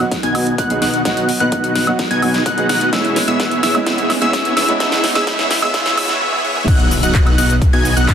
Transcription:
Already playing: riser
0.00 F#3 B3 D#4 F#4
0.11 kick, snare, closed hi-hat
0.23 B3 D#4 F#4 D#5 G#5 G#6, closed hi-hat
0.34 F#3 B3 D#4 F#4, open hi-hat, high woodblock
0.47 closed hi-hat
0.58 B3 D#4 F#4 D#5 F#5 F#6, kick, closed hi-hat
0.70 F#3 B3 D#4 G#4, closed hi-hat
0.82 B3 D#4 F#4 D#5 F#5 F#6, snare, open hi-hat
0.94 closed hi-hat
1.05 F#3 B3 D#4 F#4 D#5 F#5 F#6, kick, snare, closed hi-hat
1.17 closed hi-hat
1.29 open hi-hat
1.40 F#3 B3 D#4 F#4 B4 D#5 F#5 F#6, closed hi-hat
1.52 kick, closed hi-hat
1.64 closed hi-hat
1.75 B3 D#4 F#4 D#5 F#5 F#6, snare, open hi-hat
1.87 F#3 B3 D#4 F#4, closed hi-hat, high woodblock
1.99 kick, snare, closed hi-hat
2.11 B3 D#4 F#4 D#5 G#5 G#6, closed hi-hat
2.22 F#3 B3 D#4 F#4, open hi-hat, high woodblock
2.34 snare, closed hi-hat
2.46 B3 D#4 F#4 D#5 F#5 F#6, kick, closed hi-hat
2.57 F#3 B3 D#4 G#4, closed hi-hat
2.69 B3 D#4 F#4 D#5 F#5 F#6, snare, open hi-hat
2.81 closed hi-hat
2.92 G#3 B3 C#4 E4 G#4 C#5 E5 E6, kick, snare, closed hi-hat
3.05 closed hi-hat
3.16 snare, open hi-hat
3.27 G#3 B3 C#4 E4 G#4 C#5 E5 E6, closed hi-hat
3.40 kick, snare, closed hi-hat
3.51 closed hi-hat
3.63 B3 E4 G#4 C#5 E5 E6, snare, open hi-hat
3.74 G#3 B3 C#4 E4, closed hi-hat, high woodblock
3.86 G#3 B3 C#4 E4 G#4 C#5 E5 E6, kick, snare, closed hi-hat
3.98 closed hi-hat
4.10 snare, open hi-hat, high woodblock
4.21 G#3 B3 C#4 E4 G#4 C#5 E5 E6, closed hi-hat
4.33 kick, snare, closed hi-hat
4.45 closed hi-hat
4.57 B3 E4 G#4 C#5 E5 E6, snare, open hi-hat
4.68 G#3 B3 C#4 E4, closed hi-hat
4.80 G#3 B3 C#4 E4 G#4 C#5 E5 E6, kick, snare, closed hi-hat
4.92 snare, closed hi-hat
5.04 snare, open hi-hat
5.15 G#3 B3 C#4 E4 G#4 C#5 E5 E6, snare, closed hi-hat
5.26 G#3 B3 C#4 E4 C#5 E5 E6, kick, snare, closed hi-hat
5.39 snare, closed hi-hat
5.51 snare, open hi-hat
5.62 G#3 B3 C#4 E4 G#4 C#5 E5 E6, snare, high woodblock
5.73 G#3 B3 C#4 E4 G#4 C#5 E5 E6, kick, snare, closed hi-hat
5.86 snare, closed hi-hat
5.97 G#3 B3 C#4 E4 G#4 C#5 E5 E6, snare, open hi-hat, high woodblock
6.09 snare, closed hi-hat
6.21 B3 E4 G#4 C#5 E5, high tom
6.33 high tom
6.44 B3 E4 G#4 C#5 E5
6.56 mid tom
6.68 B1 B3 D#4 F#4 F#5 F#6, kick, closed hi-hat, crash, ride, impact, shaker
6.80 closed hi-hat
6.91 open hi-hat, shaker
7.03 B1 B3 D#4 F#4 D#5 F#5 F#6, closed hi-hat, shaker
7.15 kick, clap, closed hi-hat, ride, shaker
7.27 closed hi-hat, high woodblock
7.38 B1 B3 D#4 F#4 D#5 F#5 F#6, open hi-hat, shaker
7.50 closed hi-hat, shaker
7.62 kick, closed hi-hat, ride, shaker
7.73 B1 B3 D#4 F#4 D#5 G#5 G#6, closed hi-hat
7.85 open hi-hat, shaker
7.97 B1 B3 D#4 F#4 D#5 F#5 F#6, closed hi-hat, shaker
8.08 kick, clap, closed hi-hat, ride, high woodblock, shaker

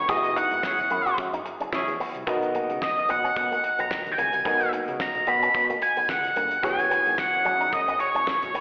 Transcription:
0.08 F#1 B3 E4 F#4 G#4 D#5, kick, closed hi-hat
0.16 E5
0.24 muted clean electric guitar stroke, closed hi-hat
0.36 D#4 F#5, closed hi-hat
0.51 G#1, closed hi-hat
0.63 C#4 E4 G#4 F#5, muted clean electric guitar stroke, kick, snare
0.78 F#1, closed hi-hat
0.90 F#2 E4, closed hi-hat
1.06 F#4, closed hi-hat
1.18 F#2, kick, closed hi-hat
1.33 D#4, closed hi-hat
1.46 muted clean electric guitar stroke, closed hi-hat
1.60 F#1 C#4, closed hi-hat
1.73 F#2 C#4 E4 G#4, kick, snare
1.88 E2, closed hi-hat
2.00 B3, open hi-hat
2.15 C2, closed hi-hat
2.27 B1 B3 D#4 F#4 A#4 D#5, kick, closed hi-hat
2.42 muted clean electric guitar stroke, closed hi-hat
2.55 A#3, closed hi-hat
2.70 C#2, closed hi-hat
2.82 D#5, muted clean electric guitar stroke, kick, snare
2.97 B1, closed hi-hat
3.09 B2 B3 F#5, closed hi-hat
3.24 C#4, closed hi-hat
3.36 B2 F#5, kick, closed hi-hat
3.52 A#3, closed hi-hat
3.64 muted clean electric guitar stroke, closed hi-hat
3.79 B1 B3 A#5, closed hi-hat
3.91 kick, snare
4.06 D#2, closed hi-hat
4.12 G5
4.18 C#2 A#3 G#5, closed hi-hat
4.33 C2, closed hi-hat
4.45 B1 B3 D#4 F#4 A#4 D#5, kick, closed hi-hat
4.61 muted clean electric guitar stroke, closed hi-hat
4.73 A#3, closed hi-hat
4.88 C#2, closed hi-hat
5.00 A#5, muted clean electric guitar stroke, kick, snare
5.15 B1, closed hi-hat
5.27 B2 B3 B5, closed hi-hat
5.43 C#4, closed hi-hat
5.54 B2 B5, kick, closed hi-hat
5.70 A#3, closed hi-hat
5.82 G#5, muted clean electric guitar stroke, closed hi-hat
5.97 B1 B3, closed hi-hat
6.09 C#2 F#5, kick, snare
6.24 closed hi-hat
6.36 G1 A#3, closed hi-hat
6.51 closed hi-hat
6.63 F#1 B3 E4 F#4 G#4 C#5 G#5, kick, closed hi-hat
6.79 muted clean electric guitar stroke, closed hi-hat
6.91 B3, closed hi-hat
7.06 G#1, closed hi-hat
7.18 F#5, muted clean electric guitar stroke, kick, snare
7.33 F#1, closed hi-hat
7.45 F#2 C#4, closed hi-hat
7.61 D#4, closed hi-hat
7.72 F#2 D#5, kick, closed hi-hat
7.88 B3, closed hi-hat
8.00 C#5, muted clean electric guitar stroke, closed hi-hat
8.15 F#1 C#4, closed hi-hat
8.27 kick, snare
8.42 B1, closed hi-hat
8.54 G#1 B3, closed hi-hat

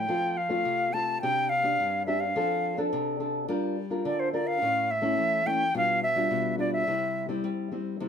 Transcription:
Already playing: G5
0.08 F3 A3 C4 F4
0.37 F5
0.49 A3 C4 F4
0.65 C3
0.93 A3 C4 F4 A5
1.22 C3 C4 D4 G4 G5
1.49 F5
1.63 C4 D4 G4
1.80 G2
2.06 C4 D4 G4 E5
2.20 F5
2.36 F3 C4 D4 A4
2.77 C4 D4 A4
2.93 C3
3.20 C4 D4 A4
3.48 G3 D4 F4 A#4
3.90 D4 F4 A#4
4.05 D3 D5
4.20 C5
4.33 D4 F4 A#4 D5
4.47 F5
4.62 A2 A3 C#4 E4
4.91 E5
5.02 A3 C#4 E4
5.17 E3
5.46 A3 C#4 E4 G5
5.74 B2 G3 D4 F4 F5
6.03 E5
6.16 G3 D4 F4
6.31 B2
6.58 G3 D4 F4 D5
6.73 E5
6.87 C3 G3 C4 E4
7.29 G3 C4 E4
7.44 G3
7.72 G3 C4 E4
8.00 C3 G3 C4 E4

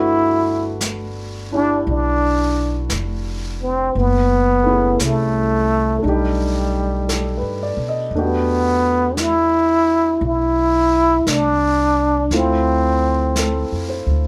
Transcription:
Already playing: G1 A3 D4 E4 F#4 B4 D5
0.81 brush sweep, snare, hi-hat pedal
1.52 D4 E4 G4
1.86 B1 D4, brush sweep
2.90 F1, brush sweep, snare, hi-hat pedal
3.62 C4
3.95 F#1 B3, brush sweep
4.63 A3 C#4 E4
4.69 G#4
4.99 C2, brush sweep, snare, hi-hat pedal
5.04 A3
5.99 A3 D4
6.04 B1 G3 D#4, brush sweep
6.09 G4
7.09 A4, brush sweep, snare, hi-hat pedal
7.37 B4
7.42 G2
7.63 D5
7.77 B2
7.89 D#5
8.11 E2 A3, brush sweep
8.15 B3 D4 F#4 G4
9.17 E4, brush sweep, snare, hi-hat pedal
10.21 B1, brush sweep
10.25 E4
11.27 C2 D4, brush sweep, snare, hi-hat pedal
12.30 D2 A3 C4 E4 F4, brush sweep, snare
13.36 A4, brush sweep, snare, hi-hat pedal
13.72 F2
13.89 C5
14.06 D2

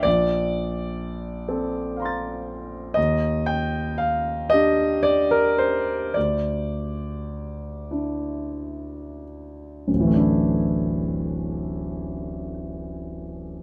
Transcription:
0.03 A#1 D5
1.48 C4 A4
1.97 F5 A#5
2.02 C6 A6
2.94 D#2 D#5
3.46 G5
3.98 F5
4.50 D4 G4 D#5
5.03 D5
5.31 A#4
5.58 C5
6.14 D2 D5
7.91 D4 E4
9.88 D1
9.94 A1
10.00 E3
10.07 A3
10.14 D4
10.20 E4

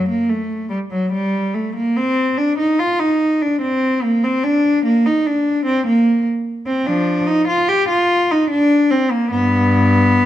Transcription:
0.09 A#3
0.29 A3
0.70 G3
0.91 F#3
1.12 G3
1.54 A3
1.75 A#3
1.97 C4
2.37 D4
2.58 D#4
2.79 F4
2.99 D#4
3.41 D4
3.61 C4
4.03 A#3
4.24 C4
4.43 D4
4.85 A#3
5.06 D#4
5.26 D4
5.65 C4
5.86 A#3
6.66 C4
6.86 F3 D4
7.27 D#4
7.48 F4
7.69 G4
7.88 F4
8.31 D#4
8.50 D4
8.91 C4
9.11 A#3
9.31 G2 B3

